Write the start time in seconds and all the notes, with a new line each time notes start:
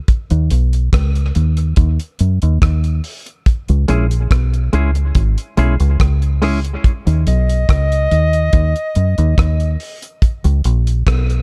0.08 kick, closed hi-hat
0.30 D#2, closed hi-hat
0.51 B1, closed hi-hat
0.73 closed hi-hat
0.93 C#2, kick, cross-stick, closed hi-hat
1.15 closed hi-hat
1.35 D#2, closed hi-hat
1.57 closed hi-hat
1.76 D#2, kick, closed hi-hat
2.00 closed hi-hat
2.19 F#2, closed hi-hat
2.42 D#2, closed hi-hat
2.62 D#2, kick, cross-stick, closed hi-hat
2.84 closed hi-hat
3.04 open hi-hat
3.26 closed hi-hat
3.46 kick, closed hi-hat
3.69 C#2, closed hi-hat
3.88 A#1 G#3 C#4 E4 G#4, closed hi-hat
4.11 closed hi-hat
4.31 B1, kick, cross-stick, closed hi-hat
4.54 closed hi-hat
4.73 C#2 G#3 C#4 E4 G#4, closed hi-hat
4.95 muted clean electric guitar stroke, closed hi-hat
5.15 G#1, kick, closed hi-hat
5.38 closed hi-hat
5.57 B1 G#3 C#4 E4 G#4, closed hi-hat
5.80 C#2, closed hi-hat
6.00 C#2, kick, cross-stick, closed hi-hat
6.22 closed hi-hat
6.42 G#3 C#4 E4 G#4, cross-stick, open hi-hat
6.65 closed hi-hat
6.84 kick, closed hi-hat
7.07 D#2, closed hi-hat
7.27 B1 D#5, closed hi-hat
7.49 closed hi-hat
7.69 C#2, kick, cross-stick, closed hi-hat
7.92 closed hi-hat
8.11 D#2, closed hi-hat
8.33 closed hi-hat
8.53 D#2, kick, closed hi-hat
8.76 closed hi-hat
8.95 F#2, closed hi-hat
9.18 D#2, closed hi-hat
9.38 D#2, kick, cross-stick, closed hi-hat
9.60 closed hi-hat
9.80 open hi-hat
10.02 closed hi-hat
10.22 kick, closed hi-hat
10.44 C#2, closed hi-hat
10.64 A#1, closed hi-hat
10.87 closed hi-hat
11.07 B1, kick, cross-stick, closed hi-hat
11.30 closed hi-hat